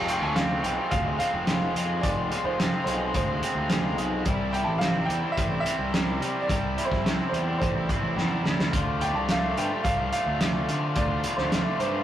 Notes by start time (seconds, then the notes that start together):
Already playing: F1 F2 C3 G#3
0.05 F3 G#3 C4 F4, closed hi-hat
0.10 G5
0.21 D2 F3 G#3 C4 F4 G#5
0.35 F2 C3 F3 G#3 C4 F4 F5, snare, closed hi-hat
0.48 F3 G#3 C4 F4
0.63 B1 F3 G#3 C4 F4 G5, closed hi-hat
0.77 F3 G#3 C4 F4
0.90 D2 G#3 F5, kick, closed hi-hat
1.04 F3 G#3 C4 F4
1.18 F3 G#3 C4 F4 F5, closed hi-hat
1.32 F1 F3 G#3 C4 F4
1.46 F2 C3 F3 G#3 C4 F4, snare, closed hi-hat
1.73 F2 F3 G#3 C4 F4, closed hi-hat
2.01 F1 F2 C3 F3 G#3 C4 F4 D5, kick, closed hi-hat
2.29 F3 G#3 C4 F4, closed hi-hat
2.44 F1 F3 G#3 C4 F4 C5
2.58 F2 C3 F3 G#3 C4 F4, snare, closed hi-hat
2.73 F3 G#3 C4 F4
2.84 B1 F3 C5, closed hi-hat
2.89 G#3 C4 F4
3.01 F3 G#3 C4 F4
3.13 D2 G#3 C5, kick, closed hi-hat
3.29 F3 G#3 C4 F4
3.42 F3 G#3 C4 F4, closed hi-hat
3.55 D2 F3 G#3 C4 F4
3.69 F2 C3 F3 G#3 C4 F4, snare, closed hi-hat
3.95 B1 F3 G#3 C4 F4, closed hi-hat
4.24 C2 C3 E3 G3 C4 E4, kick, closed hi-hat
4.51 E3 G3 C4 E4 G5, closed hi-hat
4.64 A1 C4 E4 A5
4.69 G3
4.78 C3 E3 G3 F5, snare, closed hi-hat
4.83 C4 E4
4.94 G3 C4 E4
5.06 E2 E3 G3 G5
5.10 C4 E4, closed hi-hat
5.23 G3 C4 E4
5.32 E5
5.37 A1 G3, kick, closed hi-hat
5.50 G3 C4 E4
5.60 E5
5.65 E3 G3 C4 E4, closed hi-hat
5.78 C2 G3 C4 E4
5.92 C3 E3 G3 C4 E4, snare, closed hi-hat
6.20 C3 E3 G3 C4 E4, closed hi-hat
6.42 D5
6.49 C2 C3 E3 G3 C4 E4, kick, closed hi-hat
6.77 E3 G3 C4 E4, closed hi-hat
6.85 C5
6.91 C2 G3 C4 E4, kick, snare
7.05 C3 E3 G3 C4 E4, snare, closed hi-hat
7.20 G3 C4 E4
7.29 E2 E3 C5
7.33 G3 C4 E4, closed hi-hat
7.46 G3 C4 E4
7.59 A1 G3 C5, kick, closed hi-hat
7.74 G3 C4 E4
7.89 E3 G3 C4 E4, kick, closed hi-hat
8.02 A1 G3 C4 E4
8.16 E2 C3 E3 G3 C4 E4, snare
8.44 D2 E3 G3 C4 E4, snare
8.60 snare
8.72 D2 D3 F3 A3 D4 F4, kick, closed hi-hat
8.99 D3 A3 D4 F4 G5, closed hi-hat
9.13 C2 A3 D4 F4 A5
9.28 D3 A3 D4 F4 F5, snare, closed hi-hat
9.41 A3 D4 F4
9.56 G2 D3 F3 A3 D4 F4 G5, closed hi-hat
9.70 A3 D4 F4
9.83 C2 F3 F5, kick, closed hi-hat
9.98 A3 D4 F4
10.12 D3 A3 D4 F4 F5, closed hi-hat
10.25 D2 A3 D4 F4
10.40 D3 F3 A3 D4 F4, snare, closed hi-hat
10.68 D3 F3 A3 D4 F4, closed hi-hat
10.96 D2 D3 F3 A3 D4 F4 D5, kick, closed hi-hat
11.23 D3 A3 D4 F4, closed hi-hat
11.37 D2 A3 D4 F4 C5, snare
11.50 D3 A3 D4 F4, snare, closed hi-hat
11.64 A3 D4 F4
11.78 G2 D3 F3 A3 D4 F4 C5, closed hi-hat
11.93 A3 D4 F4